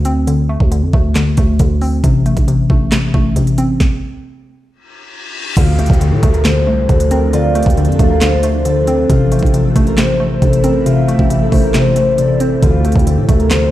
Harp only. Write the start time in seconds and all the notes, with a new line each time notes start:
Already playing: A4
5.57 F4
5.79 G4
6.12 A4
6.34 A#4
6.45 C5
6.67 C5
6.88 A4
7.11 A#4
7.34 F4
7.55 G4
7.88 A4
8.10 A#4
8.22 C5
8.43 C5
8.65 A4
9.10 F4
9.31 G4
9.65 A4
9.87 A#4
9.98 C5
10.20 C5
10.42 A4
10.64 A#4
10.86 F4
11.08 G4
11.42 A4
11.63 A#4
11.74 C5
11.97 C5
12.19 A4
12.63 F4
12.84 G4
13.18 A4
13.40 A#4
13.50 C5